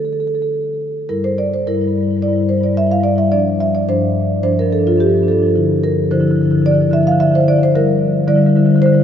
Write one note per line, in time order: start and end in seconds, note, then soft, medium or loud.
0.00 1.03 D3 soft
0.00 1.04 C4 soft
0.00 1.04 F4 soft
0.05 0.13 A4 soft
0.13 0.20 A4 soft
0.20 0.27 A4 soft
0.27 0.35 A4 soft
0.35 0.42 A4 soft
0.42 0.46 A4 soft
1.09 1.65 G2 soft
1.09 1.64 G3 soft
1.09 1.65 E4 soft
1.09 1.24 A#4 medium
1.24 1.38 C5 medium
1.38 1.52 D5 medium
1.54 1.67 C5 medium
1.67 1.77 G2 medium
1.67 1.75 G3 soft
1.67 1.75 E4 soft
1.67 2.20 A#4 medium
1.75 1.87 G2 soft
1.75 1.85 G3 soft
1.75 1.81 E4 soft
1.81 1.93 G3 soft
1.81 1.88 E4 soft
1.87 1.98 G2 soft
1.87 1.96 E4 soft
1.93 2.01 G3 soft
1.93 2.03 E4 soft
1.98 2.07 G2 soft
1.98 2.09 G3 soft
2.03 2.11 E4 soft
2.07 2.18 G2 soft
2.07 2.16 G3 soft
2.07 2.17 E4 soft
2.16 2.28 G2 soft
2.16 2.25 G3 soft
2.16 2.23 E4 soft
2.22 2.33 G3 soft
2.22 2.29 E4 soft
2.22 2.48 D5 medium
2.28 2.38 G2 medium
2.28 2.36 E4 soft
2.33 2.41 G3 soft
2.33 2.43 E4 soft
2.38 2.50 G2 soft
2.38 2.49 G3 soft
2.43 2.50 E4 soft
2.49 2.61 G2 soft
2.49 2.57 G3 soft
2.49 2.58 E4 soft
2.49 2.63 C5 medium
2.57 2.66 G3 soft
2.57 2.65 E4 soft
2.61 2.72 G2 soft
2.61 2.77 D5 medium
2.65 2.75 G3 soft
2.65 2.73 E4 soft
2.72 2.82 G2 soft
2.72 2.82 G3 soft
2.72 2.79 E4 soft
2.77 2.86 E4 soft
2.77 2.91 E5 medium
2.82 2.93 G2 soft
2.82 2.91 G3 soft
2.86 2.94 E4 soft
2.91 3.02 G2 soft
2.91 3.00 G3 soft
2.91 3.01 E4 soft
2.91 3.05 F5 medium
3.00 3.11 G2 soft
3.00 3.08 G3 soft
3.00 3.08 E4 soft
3.00 3.18 D5 medium
3.08 3.21 G2 soft
3.08 3.17 G3 soft
3.08 3.16 E4 soft
3.16 3.28 G3 soft
3.16 3.23 E4 soft
3.16 3.32 E5 medium
3.21 3.28 G2 soft
3.21 3.28 E4 soft
3.32 3.86 G2 soft
3.32 3.86 F3 soft
3.32 3.86 D4 soft
3.32 3.59 D5 medium
3.60 3.74 E5 medium
3.75 3.88 D5 medium
3.88 4.42 G2 medium
3.88 4.42 F3 soft
3.88 4.42 D4 soft
3.88 4.42 C5 medium
4.43 4.54 G2 medium
4.43 4.53 F3 medium
4.43 4.53 D4 soft
4.43 4.58 C5 medium
4.53 4.65 G2 soft
4.53 4.62 F3 soft
4.53 4.61 D4 soft
4.59 4.70 F3 soft
4.59 4.70 D4 soft
4.59 4.73 A#4 medium
4.65 4.77 G2 soft
4.70 4.78 F3 soft
4.70 4.79 D4 soft
4.70 4.86 A4 medium
4.77 4.87 G2 soft
4.77 4.87 F3 soft
4.77 4.88 D4 soft
4.87 4.99 G2 medium
4.87 4.96 F3 soft
4.87 4.97 D4 soft
4.87 5.01 F4 medium
4.96 5.09 G2 soft
4.96 5.05 F3 soft
4.96 5.06 D4 soft
5.00 5.27 G4 medium
5.05 5.14 F3 soft
5.05 5.14 D4 soft
5.09 5.21 G2 soft
5.14 5.24 F3 soft
5.14 5.23 D4 soft
5.21 5.32 G2 soft
5.21 5.32 F3 soft
5.21 5.31 D4 soft
5.28 5.42 F3 soft
5.28 5.39 D4 soft
5.28 5.55 A4 medium
5.32 5.42 G2 soft
5.39 5.52 G2 soft
5.39 5.52 F3 soft
5.39 5.46 D4 soft
5.46 5.52 D4 soft
5.55 6.09 D3 medium
5.55 6.09 F3 soft
5.55 6.09 E4 medium
5.84 6.10 A#4 medium
6.11 6.21 D3 medium
6.11 6.19 F3 medium
6.11 6.20 E4 medium
6.11 6.63 C5 medium
6.19 6.31 D3 medium
6.19 6.29 F3 soft
6.19 6.27 E4 soft
6.27 6.41 D3 medium
6.27 6.37 F3 soft
6.27 6.36 E4 soft
6.36 6.46 F3 soft
6.36 6.43 E4 soft
6.41 6.52 D3 medium
6.41 6.51 E4 soft
6.46 6.55 F3 soft
6.51 6.62 D3 medium
6.51 6.58 E4 soft
6.55 6.63 F3 soft
6.55 6.67 E4 soft
6.62 6.71 D3 medium
6.62 6.72 F3 soft
6.66 6.74 E4 soft
6.66 6.92 D5 loud
6.71 6.81 D3 medium
6.71 6.80 F3 soft
6.71 6.82 E4 medium
6.80 6.91 D3 medium
6.80 6.88 F3 soft
6.80 6.89 E4 soft
6.88 7.01 D3 medium
6.88 6.97 F3 soft
6.88 6.96 E4 soft
6.93 7.05 F3 soft
6.93 7.03 E4 soft
6.93 7.07 E5 medium
7.01 7.12 D3 medium
7.01 7.11 E4 medium
7.05 7.14 F3 soft
7.05 7.21 F5 loud
7.11 7.21 D3 medium
7.11 7.23 F3 soft
7.11 7.19 E4 soft
7.19 7.31 D3 medium
7.19 7.31 F3 soft
7.19 7.27 E4 soft
7.19 7.34 E5 loud
7.27 7.34 E4 soft
7.31 7.41 D3 medium
7.31 7.39 F3 soft
7.31 7.41 E4 soft
7.35 7.48 F3 soft
7.35 7.48 C5 medium
7.41 7.50 D3 medium
7.41 7.48 E4 soft
7.48 7.59 D3 medium
7.48 7.56 F3 soft
7.48 7.56 E4 soft
7.48 7.62 D5 loud
7.56 7.71 D3 medium
7.56 7.65 F3 soft
7.56 7.63 E4 soft
7.63 7.71 F3 soft
7.63 7.71 E4 soft
7.63 7.76 C5 medium
7.75 8.27 D3 medium
7.75 8.27 G3 medium
7.75 8.27 E4 medium
7.75 8.26 A#4 loud
8.28 8.37 D3 medium
8.28 8.37 G3 medium
8.28 8.35 E4 medium
8.28 8.79 D5 loud
8.35 8.46 D3 medium
8.35 8.46 G3 soft
8.35 8.42 E4 soft
8.42 8.50 E4 soft
8.46 8.56 D3 medium
8.46 8.56 G3 medium
8.46 8.56 E4 soft
8.56 8.66 D3 medium
8.56 8.65 G3 soft
8.56 8.64 E4 soft
8.64 8.76 D3 medium
8.64 8.74 G3 medium
8.64 8.71 E4 soft
8.71 8.84 G3 soft
8.71 8.78 E4 soft
8.76 8.86 D3 medium
8.76 8.85 E4 soft
8.82 8.92 G3 medium
8.82 8.93 E4 soft
8.82 9.04 C5 loud
8.86 8.95 D3 medium
8.92 9.04 D3 medium
8.92 9.04 G3 soft
8.92 9.00 E4 soft
9.00 9.04 E4 soft